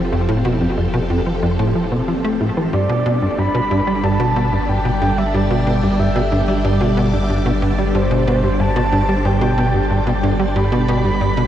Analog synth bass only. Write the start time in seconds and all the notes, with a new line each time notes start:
0.12 F2
0.29 A2
0.45 B2
0.61 F2
0.77 F2
0.94 B2
1.10 F2
1.26 F3
1.43 F2
1.59 A2
1.75 F3
1.92 B2
2.08 F3
2.24 A3
2.41 A2
2.57 E3
2.73 G2
2.89 B2
3.06 B2
3.22 G2
3.38 G2
3.54 B2
3.71 G2
3.87 G3
4.03 G2
4.20 B2
4.36 B2
4.53 G2
4.69 G2
4.85 B2
5.02 G2
5.18 G3
5.34 G2
5.51 B2
5.67 B2
5.83 G2
5.99 G2
6.16 B2
6.32 G2
6.48 G3
6.64 G2
6.81 B2
6.97 B2
7.13 G2
7.30 G2
7.46 B2
7.62 G2
7.78 G3
7.95 G2
8.11 B2
8.27 B2
8.44 G2
8.60 G2
8.76 B2
8.92 G2
9.09 G3
9.25 G2
9.41 B2
9.58 B2
9.74 G2
9.90 G2
10.07 B2
10.23 G2
10.39 G3
10.56 G2
10.72 B2
10.88 B2
11.05 G2
11.21 G2
11.37 B2